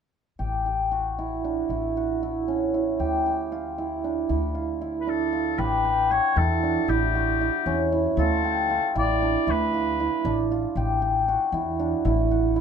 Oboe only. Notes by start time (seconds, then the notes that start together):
5.01 B4
5.10 A4
5.59 B4
6.11 C#5
6.38 A4
6.89 G4
8.18 A4
8.99 D5
9.50 B4